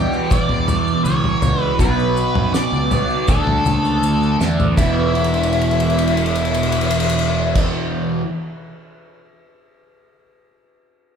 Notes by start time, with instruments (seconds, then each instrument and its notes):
Already playing: distorted electric guitar E2 B2 E3, lead electric guitar G4
0.13 maracas
0.31 lead electric guitar D5, kick, floor tom, maracas
0.49 fingered electric bass E2, floor tom
0.68 floor tom, maracas
0.87 maracas
1.04 fingered electric bass C#2, distorted electric guitar E2 B2 E3, lead electric guitar C#5, maracas
1.24 floor tom
1.42 fingered electric bass C#2, floor tom, maracas
1.61 lead electric guitar B4
1.79 fingered electric bass B1, distorted electric guitar B2 F#3 B3, lead electric guitar B4, kick, floor tom, maracas
1.99 maracas
2.17 maracas
2.35 fingered electric bass F#2, floor tom
2.54 lead electric guitar D5, snare, maracas
2.72 fingered electric bass C#2, maracas
2.91 distorted electric guitar B2 F#3 B3, floor tom, maracas
3.10 maracas
3.28 fingered electric bass D2, distorted electric guitar D3 A3 D4, lead electric guitar A4, kick, floor tom, maracas
3.46 fingered electric bass D2, floor tom
3.65 fingered electric bass C#2, floor tom, maracas
3.85 maracas
4.02 fingered electric bass D2, maracas
4.23 maracas
4.39 fingered electric bass E2, distorted electric guitar D3 A3 D4, snare, maracas
4.59 floor tom, maracas
4.76 fingered electric bass E1, distorted electric guitar E2 B2, lead electric guitar E4, kick, crash, maracas
4.80 distorted electric guitar E3
5.15 crash
5.24 ride
5.34 crash
5.43 ride
5.53 crash
5.61 ride
5.71 crash
5.80 ride
5.90 crash
5.99 ride
6.08 crash
6.17 ride
6.26 crash
6.35 ride
6.45 crash
6.54 ride
6.63 crash
6.72 ride
6.81 crash
6.91 ride
7.00 crash
7.10 ride
7.19 crash
7.55 kick, crash